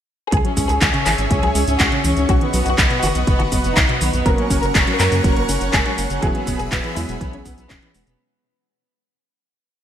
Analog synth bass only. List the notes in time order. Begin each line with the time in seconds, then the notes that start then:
0.32 C#2
0.57 C#2
0.69 C#2
0.81 C#2
1.06 G#1
1.18 G#1
1.31 C#2
1.43 C#2
1.55 C#2
1.67 C#2
1.80 C#2
2.04 C#2
2.17 C#2
2.29 B1
2.53 B1
2.66 B1
2.78 B1
3.03 F#1
3.15 B1
3.27 F#1
3.40 F#1
3.52 F#1
3.64 F#1
3.76 B1
4.01 B1
4.13 B1
4.26 F#1
4.50 F#1
4.63 F#1
4.75 F#1
5.00 F#2
5.12 F#2
5.24 F#1
5.36 F#1
5.49 F#1
5.61 F#1
5.73 F#1
5.98 F#1
6.10 F#1
6.22 E1
6.47 E1
6.59 E1
6.72 E1
6.96 E2
7.09 E1
7.21 B1
7.33 B1
7.45 B1
7.58 B1
7.70 E1
7.95 E1
8.07 E1